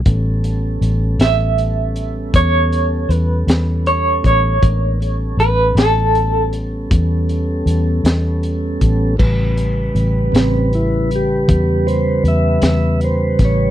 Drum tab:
CC |------------|------------|x-----------|
HH |xxxxxxxxxxxx|xxxxxxxxxxxx|-xxxxxxxxxxx|
SD |---o-----o--|---o-----o--|---o-----o-o|
BD |o-----o----o|o-----o----o|o-----o----o|